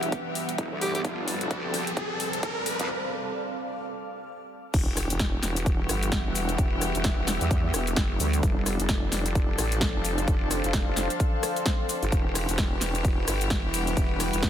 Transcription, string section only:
0.00 1.01 E3 medium
0.00 1.01 B3 medium
0.00 1.01 F#4 medium
0.00 1.01 G4 medium
1.04 2.87 F3 medium
1.04 2.87 C4 medium
1.04 2.87 D4 medium
1.04 2.87 A4 medium
4.74 8.39 E3 medium
4.74 8.39 B3 medium
4.74 8.39 F#4 medium
4.74 8.39 G4 medium
8.43 12.09 F3 medium
8.43 12.09 C4 medium
8.43 12.09 D4 medium
8.43 12.09 A4 medium
12.12 14.50 E3 medium
12.12 14.50 B3 medium
12.12 14.50 F#4 medium
12.12 14.50 G4 medium

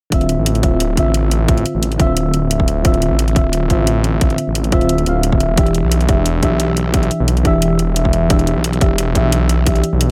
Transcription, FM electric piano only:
0.10 0.60 D3 medium
0.10 0.61 C4 medium
0.10 0.62 F4 medium
0.10 0.62 E5 medium
0.62 0.94 D3 medium
0.62 0.95 C4 medium
0.62 0.96 F4 medium
0.62 0.96 E5 medium
0.95 1.45 D3 medium
0.95 1.46 C4 medium
0.95 1.47 F4 medium
0.95 1.47 E5 medium
1.46 1.96 D3 medium
1.46 1.97 C4 medium
1.46 1.98 F4 medium
1.46 1.99 E5 medium
1.98 2.82 D3 medium
1.98 2.83 C4 medium
1.98 2.83 F4 medium
1.98 2.84 E5 loud
2.83 3.33 D3 medium
2.83 3.34 C4 medium
2.83 3.34 F4 medium
2.83 3.35 E5 medium
3.35 3.67 D3 medium
3.35 3.68 C4 medium
3.35 3.68 F4 medium
3.35 3.69 E5 medium
3.68 4.18 D3 medium
3.68 4.19 C4 medium
3.68 4.20 F4 medium
3.68 4.20 E5 medium
4.19 4.69 D3 medium
4.19 4.70 C4 medium
4.19 4.71 F4 medium
4.19 4.71 E5 medium
4.72 5.03 D3 medium
4.72 5.05 C4 medium
4.72 5.05 F4 medium
4.72 5.05 E5 loud
5.05 5.55 D3 medium
5.05 5.55 C4 medium
5.05 5.56 F4 medium
5.05 5.57 F5 medium
5.56 6.06 E3 medium
5.56 6.06 D4 medium
5.56 6.07 G4 medium
5.56 6.08 E5 medium
6.08 6.39 E3 medium
6.08 6.41 D4 medium
6.08 6.41 G4 medium
6.08 6.41 E5 medium
6.41 6.91 E3 medium
6.41 6.92 D4 medium
6.41 6.92 G4 medium
6.41 6.93 E5 medium
6.92 7.42 E3 medium
6.92 7.43 D4 medium
6.92 7.43 G4 medium
6.92 7.44 E5 medium
7.43 8.27 E3 medium
7.43 8.28 D4 medium
7.43 8.29 G4 medium
7.43 8.29 E5 loud
8.28 8.79 E3 medium
8.28 8.79 D4 medium
8.28 8.80 G4 medium
8.28 8.80 E5 medium
8.80 9.12 E3 medium
8.80 9.13 D4 medium
8.80 9.14 G4 medium
8.80 9.14 E5 medium
9.14 9.63 E3 medium
9.14 9.64 D4 medium
9.14 9.65 G4 medium
9.14 9.66 E5 medium
9.65 10.11 E3 medium
9.65 10.11 D4 medium
9.65 10.11 G4 medium
9.65 10.11 E5 medium

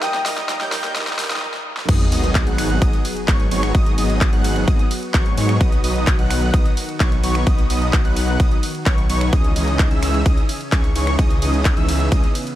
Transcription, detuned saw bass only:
1.89 2.10 G#1 medium
2.12 2.45 G#1 medium
2.47 2.79 G#1 medium
2.82 2.95 G#1 loud
3.28 3.49 G#1 loud
3.52 3.72 G#1 loud
3.75 3.96 G#1 loud
3.98 4.31 G#1 medium
4.33 4.65 G#1 medium
4.68 4.81 G#1 loud
5.14 5.35 G#1 medium
5.37 5.58 G#2 medium
5.61 5.82 B1 loud
5.84 6.17 B1 medium
6.19 6.51 B1 medium
6.54 6.67 B1 loud
7.00 7.21 B1 medium
7.24 7.44 B1 loud
7.47 7.68 B1 loud
7.70 8.03 B1 medium
8.05 8.37 B1 loud
8.40 8.53 B1 loud
8.86 9.07 B1 loud
9.10 9.31 B1 loud
9.33 9.54 C#2 medium
9.56 9.89 C#2 loud
9.91 10.23 C#2 loud
10.26 10.39 C#2 loud
10.72 10.93 C#2 medium
10.96 11.17 C#2 medium
11.19 11.40 C#2 medium
11.42 11.75 C#2 loud
11.77 12.10 C#2 medium
12.12 12.25 C#2 loud

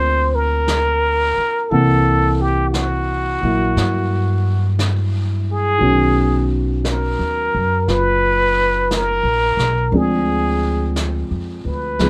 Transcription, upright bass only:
0.00 1.33 D2 medium
1.37 muted upright bass stroke soft
1.71 3.39 C2 medium
3.43 3.74 A#1 medium
3.76 5.77 G2 medium
5.81 7.14 B1 medium
7.19 7.51 D#2 medium
7.55 7.86 F#2 medium
7.88 9.20 F#1 medium
9.23 9.55 A#1 soft
9.57 9.89 B1 medium
9.92 11.25 D2 medium
11.31 11.62 F2 soft
11.65 11.96 D2 medium
12.00 12.10 C#2 medium

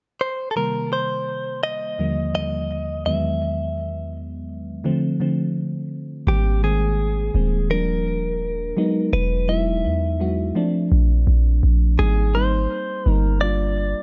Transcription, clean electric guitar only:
0.21 0.51 C5 medium
0.51 0.56 A4 medium
0.57 0.92 A#4 medium
0.93 1.63 C5 medium
1.63 2.34 D#5 medium
2.35 3.06 D#5 loud
3.06 5.87 E5 medium
6.28 6.63 G4 medium
6.64 7.70 G#4 medium
7.71 9.13 A#4 medium
9.13 9.50 B4 loud
9.49 10.87 E5 loud
11.99 12.35 G#4 medium
12.35 13.11 C5 medium
13.11 13.41 A#4 medium
13.41 14.03 D5 loud

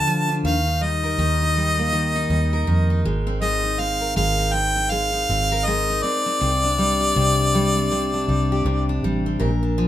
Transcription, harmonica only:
0.00 0.40 A5 loud
0.45 0.84 F5 medium
0.82 3.06 D#5 medium
3.42 3.82 D#5 medium
3.80 4.16 F5 medium
4.17 4.55 F5 loud
4.53 4.92 G5 loud
4.90 5.66 F5 loud
5.65 6.04 D#5 medium
6.02 9.02 D5 loud

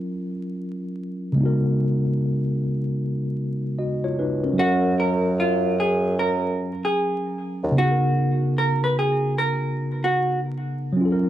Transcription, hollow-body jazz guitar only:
4.59 4.94 F#4 loud
5.00 5.34 A#4 medium
5.40 5.75 F4 medium
5.80 6.15 G#4 medium
6.19 6.79 A#4 medium
6.85 7.74 G#4 medium
7.78 8.54 F#4 loud
8.58 8.80 A#4 medium
8.84 8.96 B4 medium
8.99 9.34 G#4 medium
9.38 9.99 A#4 medium
10.04 10.39 F#4 medium

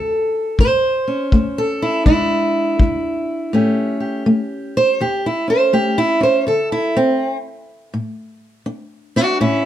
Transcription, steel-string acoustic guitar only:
0.00 0.54 D4 medium
0.00 0.57 F#4 soft
0.00 0.57 A4 soft
0.60 1.28 A2 medium
0.60 1.58 C5 medium
1.07 2.04 C#4 soft
1.32 2.01 A3 medium
1.58 2.07 A4 medium
1.82 2.05 E4 medium
2.06 2.74 E2 medium
2.06 2.79 G#3 soft
2.06 3.51 D4 medium
2.06 3.53 E4 medium
2.80 3.48 G#3 medium
3.53 4.21 A2 medium
3.53 4.26 A3 soft
3.53 5.46 C#4 soft
3.53 3.99 G4 soft
4.00 5.00 G4 soft
4.26 4.94 A3 medium
4.77 5.01 C5 loud
5.00 5.68 E2 medium
5.00 5.25 G4 medium
5.26 5.50 E4 medium
5.48 6.19 C#4 soft
5.48 5.74 C5 medium
5.73 6.41 A3 medium
5.73 5.98 G4 medium
5.98 6.22 E4 loud
6.21 6.43 C#4 soft
6.21 6.47 C5 medium
6.47 7.15 D3 medium
6.47 6.72 A4 medium
6.72 6.96 E4 medium
6.97 7.36 C4 medium
7.94 8.61 A2 medium
8.66 9.15 D4 medium
9.16 9.40 D4 medium
9.16 9.40 F#4 medium
9.41 9.65 A2 medium
9.41 9.64 C#4 medium
9.41 9.65 E4 medium

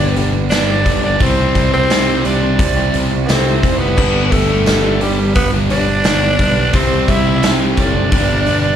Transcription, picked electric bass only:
0.00 0.14 G1 medium
0.17 0.49 G1 medium
0.52 0.83 G1 medium
0.86 1.18 G1 medium
1.21 1.52 C2 loud
1.55 1.87 C2 medium
1.90 2.22 C2 medium
2.25 2.57 C2 medium
2.60 2.91 C2 loud
2.94 3.26 C2 medium
3.29 3.60 C2 medium
3.63 3.95 F1 medium
3.98 4.30 G1 loud
4.32 4.64 G1 medium
4.67 4.99 G1 medium
5.02 5.33 G1 medium
5.36 5.68 G1 loud
5.70 6.02 G1 medium
6.05 6.37 G1 medium
6.39 6.71 B1 medium
6.74 7.06 C2 loud
7.08 7.40 C2 medium
7.44 7.75 C2 loud
7.78 8.09 F#1 medium
8.13 8.44 G1 loud
8.48 8.76 G1 medium

